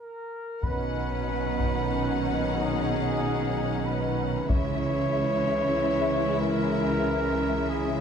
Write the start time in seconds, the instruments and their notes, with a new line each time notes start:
Already playing: trumpet section A#4
0.62 double bass section B1, cello section B2, french horn section D#3 C#4, viola section C#4, violin section D#4 F#5, trumpet section B4, taiko
1.60 taiko
2.56 trumpet section G#4
3.84 trumpet section B4
4.49 double bass section C#2, cello section C#3, french horn section E3 C#4, viola section G#3, violin section E4 E5, trumpet section C#5, taiko
6.42 trumpet section A#4
7.69 trumpet section G#4